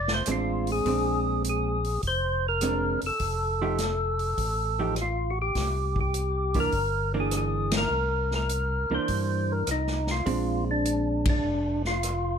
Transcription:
Already playing: tonewheel organ F1 D5
0.08 snare
0.14 tonewheel organ C5
0.26 tonewheel organ A1, hollow-body jazz guitar G#3 C4 D4, cross-stick, closed hi-hat
0.32 tonewheel organ F4
0.67 open hi-hat
0.72 tonewheel organ G#4
0.85 tonewheel organ A#1, hollow-body jazz guitar G#3 C4 D4, kick, open hi-hat
1.44 closed hi-hat
1.49 tonewheel organ G#4
1.84 open hi-hat
2.03 tonewheel organ F1, kick, open hi-hat
2.07 tonewheel organ C5
2.48 tonewheel organ A#4
2.61 hollow-body jazz guitar G#3 C4 D4, cross-stick, closed hi-hat
3.01 tonewheel organ F1, open hi-hat
3.06 tonewheel organ A4
3.19 tonewheel organ F1, kick, open hi-hat
3.62 hollow-body jazz guitar F3 A3 D#4 G4
3.78 snare, closed hi-hat
4.19 open hi-hat
4.38 tonewheel organ A1, kick, open hi-hat
4.79 hollow-body jazz guitar F3 A3 D#4 G4
4.96 cross-stick, closed hi-hat
5.01 tonewheel organ F4
5.30 tonewheel organ F#4
5.42 tonewheel organ G4
5.55 tonewheel organ C2, kick, snare, open hi-hat
5.96 kick
6.01 tonewheel organ G4
6.14 closed hi-hat
6.54 hollow-body jazz guitar E3 A#3 D4, kick, open hi-hat
6.60 tonewheel organ A#4
6.72 tonewheel organ G1, kick, open hi-hat
7.14 hollow-body jazz guitar E3 A#3 D4
7.20 tonewheel organ G#4
7.31 cross-stick, closed hi-hat
7.37 tonewheel organ G#4
7.71 snare, ride
7.77 tonewheel organ A#4
7.90 tonewheel organ C2
8.31 snare
8.35 tonewheel organ A#4
8.49 closed hi-hat
8.90 tonewheel organ C2, hollow-body jazz guitar E3 A#3 D4
8.95 tonewheel organ C5
9.08 tonewheel organ G2, kick, open hi-hat
9.52 tonewheel organ A#4
9.67 tonewheel organ C2, cross-stick, closed hi-hat
9.71 tonewheel organ D#4
9.87 snare
10.07 snare
10.11 tonewheel organ F4
10.26 tonewheel organ A#1, hollow-body jazz guitar G#3 C4 D4, kick, open hi-hat
10.71 tonewheel organ D4
10.85 closed hi-hat
11.25 tonewheel organ D4, kick, ride
11.44 tonewheel organ F1
11.85 tonewheel organ F4, snare
12.03 cross-stick, closed hi-hat

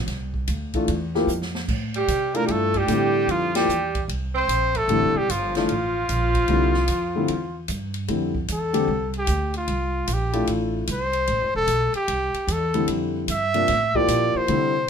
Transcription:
0.06 upright bass C2, snare, ride
0.34 kick
0.48 upright bass D2, hi-hat pedal, ride
0.74 grand piano E3 A3 D4 F4, kick, ride
0.88 upright bass E2, ride
1.15 grand piano F3 A#3 E4 G4, snare
1.27 upright bass F2, hi-hat pedal
1.42 snare
1.55 snare
1.68 upright bass A2, kick, crash
1.94 tenor saxophone G3, trumpet G4, ride
2.08 upright bass C3, hi-hat pedal, ride
2.34 grand piano A3 D4 E4 F4, tenor saxophone A#3, trumpet A#4, ride
2.45 upright bass G2, tenor saxophone G3, trumpet G4, ride
2.49 tenor saxophone A3, trumpet A4
2.74 tenor saxophone G3, trumpet G4, kick, ride
2.88 upright bass A2, grand piano D3 G3 C4 E4, hi-hat pedal, ride
3.28 upright bass F2, tenor saxophone F3, trumpet F4, ride
3.55 grand piano F3 A#3 E4 G4, tenor saxophone G3, trumpet G4, snare, ride
3.68 upright bass E2, hi-hat pedal
3.95 kick, ride
4.08 upright bass C2, ride
4.35 tenor saxophone C4, trumpet C5
4.48 upright bass A#1, hi-hat pedal, ride
4.75 tenor saxophone A3, trumpet A4, kick, ride
4.88 upright bass A1, grand piano D3 G3 C4 E4, ride
5.02 upright bass F1
5.14 upright bass E1, tenor saxophone G3, trumpet G4
5.29 upright bass G1, tenor saxophone F3, trumpet F4, hi-hat pedal, ride
5.55 grand piano E3 A3 D4 F4, tenor saxophone F3, trumpet F4, snare, ride
5.69 upright bass A1, ride
6.09 upright bass A#1, hi-hat pedal, ride
6.35 kick, ride
6.48 upright bass C2, grand piano D3 G3 C4 E4, ride
6.74 snare
6.88 upright bass F2, hi-hat pedal, ride
7.15 grand piano D3 G3 C4 E4
7.28 upright bass E2, ride
7.68 upright bass G2, hi-hat pedal, ride
7.94 ride
8.08 upright bass F2, grand piano D3 G3 C4 E4, ride
8.35 kick
8.48 upright bass E2, trumpet A4, hi-hat pedal, ride
8.73 grand piano D3 G3 C4 G4, ride
8.88 upright bass C2
9.13 ride
9.18 trumpet G4
9.27 upright bass D2, hi-hat pedal, ride
9.54 trumpet F4, ride
9.68 upright bass C2, ride
10.07 upright bass A#1, hi-hat pedal, ride
10.13 trumpet G4
10.33 grand piano A3 D4 E4 F4, ride
10.47 upright bass A1, ride
10.87 upright bass C2, hi-hat pedal, ride
10.92 trumpet C5
11.13 ride
11.27 upright bass A1, ride
11.41 upright bass F1
11.55 upright bass E1, trumpet A4
11.67 upright bass B1, hi-hat pedal, ride
11.94 trumpet G4, ride
12.08 upright bass C2, ride
12.34 muted upright bass stroke, ride
12.47 upright bass E2, hi-hat pedal, ride
12.52 trumpet A4
12.74 grand piano D3 G3 C4 E4, ride
12.88 upright bass F2, ride
13.28 upright bass G2, trumpet E5, hi-hat pedal, ride
13.54 grand piano C3 F3 A#3 D4, ride
13.68 upright bass A2, snare, ride
13.94 grand piano F3 A#3 E4 G4, trumpet D5, kick
14.08 upright bass A#2, hi-hat pedal, ride
14.35 trumpet C5, muted upright bass stroke
14.48 upright bass C3, grand piano D3 G3 C4 E4, ride

